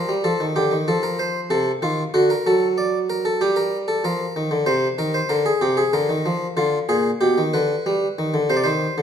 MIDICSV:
0, 0, Header, 1, 2, 480
1, 0, Start_track
1, 0, Tempo, 631579
1, 1617, Time_signature, 4, 2, 24, 8
1, 4029, Tempo, 639659
1, 6820, End_track
2, 0, Start_track
2, 0, Title_t, "Harpsichord"
2, 0, Program_c, 0, 6
2, 0, Note_on_c, 0, 70, 69
2, 67, Note_on_c, 0, 55, 55
2, 94, Note_off_c, 0, 70, 0
2, 183, Note_off_c, 0, 55, 0
2, 183, Note_on_c, 0, 69, 76
2, 184, Note_on_c, 0, 53, 61
2, 301, Note_off_c, 0, 53, 0
2, 307, Note_on_c, 0, 51, 57
2, 331, Note_off_c, 0, 69, 0
2, 421, Note_off_c, 0, 51, 0
2, 425, Note_on_c, 0, 50, 64
2, 425, Note_on_c, 0, 67, 73
2, 539, Note_off_c, 0, 50, 0
2, 541, Note_on_c, 0, 51, 56
2, 572, Note_off_c, 0, 67, 0
2, 656, Note_off_c, 0, 51, 0
2, 668, Note_on_c, 0, 53, 64
2, 668, Note_on_c, 0, 69, 74
2, 780, Note_off_c, 0, 69, 0
2, 783, Note_on_c, 0, 70, 73
2, 896, Note_off_c, 0, 70, 0
2, 906, Note_on_c, 0, 72, 78
2, 1051, Note_off_c, 0, 72, 0
2, 1126, Note_off_c, 0, 53, 0
2, 1143, Note_on_c, 0, 48, 62
2, 1143, Note_on_c, 0, 69, 78
2, 1290, Note_off_c, 0, 48, 0
2, 1290, Note_off_c, 0, 69, 0
2, 1386, Note_on_c, 0, 51, 69
2, 1387, Note_on_c, 0, 65, 73
2, 1532, Note_off_c, 0, 51, 0
2, 1533, Note_off_c, 0, 65, 0
2, 1626, Note_on_c, 0, 66, 90
2, 1627, Note_on_c, 0, 50, 70
2, 1739, Note_off_c, 0, 66, 0
2, 1749, Note_on_c, 0, 70, 80
2, 1774, Note_off_c, 0, 50, 0
2, 1861, Note_off_c, 0, 70, 0
2, 1873, Note_on_c, 0, 54, 68
2, 1874, Note_on_c, 0, 69, 72
2, 2019, Note_off_c, 0, 69, 0
2, 2110, Note_on_c, 0, 74, 82
2, 2257, Note_off_c, 0, 74, 0
2, 2353, Note_on_c, 0, 70, 81
2, 2465, Note_off_c, 0, 70, 0
2, 2471, Note_on_c, 0, 69, 80
2, 2569, Note_off_c, 0, 54, 0
2, 2584, Note_off_c, 0, 69, 0
2, 2592, Note_on_c, 0, 55, 74
2, 2594, Note_on_c, 0, 67, 79
2, 2706, Note_off_c, 0, 67, 0
2, 2707, Note_on_c, 0, 70, 82
2, 2856, Note_off_c, 0, 70, 0
2, 2948, Note_on_c, 0, 69, 75
2, 3057, Note_off_c, 0, 55, 0
2, 3064, Note_off_c, 0, 69, 0
2, 3073, Note_on_c, 0, 53, 70
2, 3075, Note_on_c, 0, 70, 86
2, 3220, Note_off_c, 0, 53, 0
2, 3316, Note_on_c, 0, 51, 71
2, 3429, Note_off_c, 0, 51, 0
2, 3429, Note_on_c, 0, 50, 63
2, 3539, Note_off_c, 0, 70, 0
2, 3544, Note_on_c, 0, 72, 84
2, 3545, Note_off_c, 0, 50, 0
2, 3545, Note_on_c, 0, 48, 94
2, 3694, Note_off_c, 0, 72, 0
2, 3695, Note_off_c, 0, 48, 0
2, 3788, Note_on_c, 0, 51, 83
2, 3789, Note_on_c, 0, 70, 70
2, 3905, Note_off_c, 0, 70, 0
2, 3909, Note_on_c, 0, 72, 68
2, 3936, Note_off_c, 0, 51, 0
2, 4023, Note_on_c, 0, 50, 82
2, 4023, Note_on_c, 0, 70, 72
2, 4024, Note_off_c, 0, 72, 0
2, 4140, Note_off_c, 0, 70, 0
2, 4146, Note_on_c, 0, 68, 64
2, 4172, Note_off_c, 0, 50, 0
2, 4262, Note_off_c, 0, 68, 0
2, 4263, Note_on_c, 0, 67, 75
2, 4266, Note_on_c, 0, 48, 80
2, 4380, Note_off_c, 0, 67, 0
2, 4381, Note_on_c, 0, 68, 70
2, 4414, Note_off_c, 0, 48, 0
2, 4499, Note_off_c, 0, 68, 0
2, 4502, Note_on_c, 0, 50, 81
2, 4502, Note_on_c, 0, 70, 80
2, 4620, Note_off_c, 0, 50, 0
2, 4623, Note_on_c, 0, 51, 89
2, 4740, Note_off_c, 0, 51, 0
2, 4745, Note_on_c, 0, 53, 90
2, 4893, Note_off_c, 0, 53, 0
2, 4968, Note_off_c, 0, 70, 0
2, 4979, Note_on_c, 0, 50, 90
2, 4981, Note_on_c, 0, 65, 73
2, 5130, Note_off_c, 0, 50, 0
2, 5131, Note_off_c, 0, 65, 0
2, 5220, Note_on_c, 0, 68, 70
2, 5221, Note_on_c, 0, 46, 93
2, 5370, Note_off_c, 0, 68, 0
2, 5372, Note_off_c, 0, 46, 0
2, 5459, Note_on_c, 0, 67, 74
2, 5461, Note_on_c, 0, 47, 92
2, 5580, Note_off_c, 0, 47, 0
2, 5587, Note_on_c, 0, 51, 90
2, 5611, Note_off_c, 0, 67, 0
2, 5703, Note_off_c, 0, 51, 0
2, 5705, Note_on_c, 0, 71, 78
2, 5708, Note_on_c, 0, 50, 88
2, 5857, Note_off_c, 0, 50, 0
2, 5951, Note_on_c, 0, 55, 96
2, 6099, Note_off_c, 0, 55, 0
2, 6193, Note_on_c, 0, 51, 84
2, 6306, Note_off_c, 0, 51, 0
2, 6308, Note_on_c, 0, 50, 79
2, 6404, Note_off_c, 0, 71, 0
2, 6424, Note_off_c, 0, 50, 0
2, 6426, Note_on_c, 0, 48, 83
2, 6427, Note_on_c, 0, 72, 73
2, 6478, Note_off_c, 0, 72, 0
2, 6479, Note_on_c, 0, 74, 60
2, 6531, Note_on_c, 0, 72, 73
2, 6532, Note_off_c, 0, 74, 0
2, 6543, Note_off_c, 0, 48, 0
2, 6545, Note_on_c, 0, 51, 86
2, 6694, Note_off_c, 0, 51, 0
2, 6789, Note_on_c, 0, 50, 85
2, 6820, Note_off_c, 0, 50, 0
2, 6820, Note_off_c, 0, 72, 0
2, 6820, End_track
0, 0, End_of_file